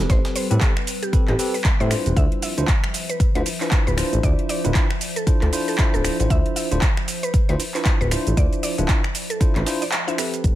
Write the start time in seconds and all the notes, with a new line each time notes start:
Already playing: G3 C4 G4 A4 B4
0.10 A1 C5, kick, snare, closed hi-hat, shaker
0.25 snare, closed hi-hat
0.36 C5, closed hi-hat, open hi-hat, shaker
0.51 A2 C4 G4 A4 B4, closed hi-hat, shaker
0.61 kick, snare, clap, closed hi-hat, shaker
0.77 finger snap
0.87 closed hi-hat, open hi-hat, shaker
1.03 G4, closed hi-hat, shaker
1.13 C4 G4 A4 B4, kick, closed hi-hat, shaker
1.28 A1 G4, clap, closed hi-hat
1.39 C4 G4 A4 B4, open hi-hat, shaker
1.54 B4, open hi-hat, shaker
1.64 kick, snare, clap, closed hi-hat, shaker
1.80 A2 C4 G4 A4 B4 C5, shaker
1.90 D4 E4 F4 C5, finger snap, closed hi-hat, open hi-hat, shaker
2.06 E1, closed hi-hat, shaker
2.16 D2 F3 C5 E5, kick, closed hi-hat, shaker
2.32 closed hi-hat
2.42 E5, closed hi-hat, open hi-hat, shaker
2.57 D1 D4 E4 F4 C5, closed hi-hat, shaker
2.68 kick, snare, clap, closed hi-hat, shaker
2.84 finger snap
2.94 snare, closed hi-hat, open hi-hat, shaker
3.09 B4, closed hi-hat, shaker
3.20 kick, closed hi-hat, shaker
3.35 D2 D4 E4 F4 B4 C5, closed hi-hat
3.46 closed hi-hat, open hi-hat, shaker
3.61 D4 E4 F4 B4 C5, snare, clap, shaker
3.71 kick, snare, clap, closed hi-hat, shaker
3.87 D1 B4, shaker
3.97 D4 E4 F4 C5, finger snap, closed hi-hat, open hi-hat, shaker
4.13 A1, closed hi-hat, shaker
4.23 D2 D5, kick, closed hi-hat, shaker
4.39 closed hi-hat
4.49 D5, closed hi-hat, open hi-hat, shaker
4.64 D1 D4 E4 F4 B4, closed hi-hat, shaker
4.75 kick, snare, clap, closed hi-hat, shaker
4.91 finger snap
5.01 closed hi-hat, open hi-hat, shaker
5.16 A4, closed hi-hat, shaker
5.27 D4 E4 F4 C5, kick, closed hi-hat, shaker
5.42 D2 A4, clap, closed hi-hat
5.53 D4 E4 F4 C5, open hi-hat, shaker
5.68 A4, open hi-hat, shaker
5.78 D4 E4 F4 C5, kick, snare, clap, closed hi-hat, shaker
5.94 D1 A4, shaker
6.04 D4 E4 F4 C5, finger snap, closed hi-hat, open hi-hat, shaker
6.20 A1 D4 E4 F4 C5, closed hi-hat, shaker
6.30 D2 E5, kick, closed hi-hat, shaker
6.46 closed hi-hat
6.56 E5, closed hi-hat, open hi-hat, shaker
6.71 D1 D4 E4 F4 C5, closed hi-hat, shaker
6.82 kick, snare, clap, closed hi-hat, shaker
6.97 finger snap
7.08 snare, closed hi-hat, open hi-hat, shaker
7.23 B4, closed hi-hat, shaker
7.34 kick, closed hi-hat, shaker
7.49 D2 D4 E4 F4 B4 C5, closed hi-hat
7.60 closed hi-hat, open hi-hat, shaker
7.74 D4 E4 F4 B4 C5, snare, clap, shaker
7.85 kick, snare, clap, closed hi-hat, shaker
8.01 D1 B4, shaker
8.11 D4 E4 F4 C5, finger snap, closed hi-hat, open hi-hat, shaker
8.27 A1, closed hi-hat, shaker
8.37 D2 D5, kick, closed hi-hat, shaker
8.53 closed hi-hat, shaker
8.63 D5, closed hi-hat, open hi-hat, shaker
8.78 D1 D4 E4 F4 B4, closed hi-hat, shaker
8.88 kick, snare, clap, closed hi-hat, shaker
9.04 finger snap, closed hi-hat
9.15 closed hi-hat, open hi-hat, shaker
9.30 A4, closed hi-hat, shaker
9.40 D4 E4 F4 C5, kick, closed hi-hat, shaker
9.56 A1 B4, clap, closed hi-hat
9.66 D4 E4 F4 C5, snare, closed hi-hat, open hi-hat, shaker
9.82 D5, open hi-hat, shaker
9.92 snare, clap, closed hi-hat, shaker
10.07 D4 E4 F4 C5 E5, shaker
10.18 C4 G4 A4 B4, finger snap, closed hi-hat, open hi-hat, shaker
10.34 closed hi-hat, shaker
10.44 A1, kick, closed hi-hat, shaker